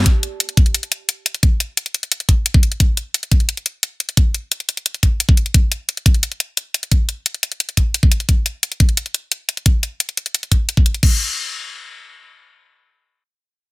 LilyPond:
\new DrumStaff \with { instrumentName = "Drums" } \drummode { \time 4/4 \tempo 4 = 175 <hh bd>8 hh8 hh16 hh16 <hh bd>16 hh16 hh16 hh16 hh8 hh8 hh16 hh16 | <hh bd>8 hh8 hh16 hh16 hh16 hh16 hh16 hh16 <hh bd>8 hh16 bd16 hh16 hh16 | <hh bd>8 hh8 hh16 hh16 <hh bd>16 hh16 hh16 hh16 hh8 hh8 hh16 hh16 | <hh bd>8 hh8 hh16 hh16 hh16 hh16 hh16 hh16 <hh bd>8 hh16 bd16 hh16 hh16 |
<hh bd>8 hh8 hh16 hh16 <hh bd>16 hh16 hh16 hh16 hh8 hh8 hh16 hh16 | <hh bd>8 hh8 hh16 hh16 hh16 hh16 hh16 hh16 <hh bd>8 hh16 bd16 hh16 hh16 | <hh bd>8 hh8 hh16 hh16 <hh bd>16 hh16 hh16 hh16 hh8 hh8 hh16 hh16 | <hh bd>8 hh8 hh16 hh16 hh16 hh16 hh16 hh16 <hh bd>8 hh16 bd16 hh16 hh16 |
<cymc bd>4 r4 r4 r4 | r4 r4 r4 r4 | }